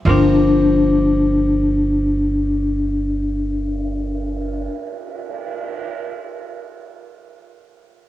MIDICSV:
0, 0, Header, 1, 6, 480
1, 0, Start_track
1, 0, Key_signature, -2, "minor"
1, 0, Tempo, 500000
1, 7765, End_track
2, 0, Start_track
2, 0, Title_t, "Vibraphone"
2, 0, Program_c, 0, 11
2, 90, Note_on_c, 0, 62, 61
2, 4512, Note_off_c, 0, 62, 0
2, 7765, End_track
3, 0, Start_track
3, 0, Title_t, "Hollow-body jazz guitar"
3, 0, Program_c, 1, 26
3, 56, Note_on_c, 1, 53, 45
3, 69, Note_on_c, 1, 58, 50
3, 84, Note_on_c, 1, 60, 52
3, 4517, Note_off_c, 1, 53, 0
3, 4529, Note_off_c, 1, 58, 0
3, 4545, Note_off_c, 1, 60, 0
3, 7765, End_track
4, 0, Start_track
4, 0, Title_t, "Upright bass"
4, 0, Program_c, 2, 32
4, 47, Note_on_c, 2, 31, 77
4, 4469, Note_off_c, 2, 31, 0
4, 7765, End_track
5, 0, Start_track
5, 0, Title_t, "Cymbal swell"
5, 1041, Note_on_c, 9, 59, 33
5, 5595, Note_off_c, 9, 59, 0
5, 7765, End_track
6, 0, Start_track
6, 0, Title_t, "Drums"
6, 49, Note_on_c, 9, 51, 46
6, 51, Note_on_c, 9, 36, 44
6, 145, Note_off_c, 9, 51, 0
6, 147, Note_off_c, 9, 36, 0
6, 7765, End_track
0, 0, End_of_file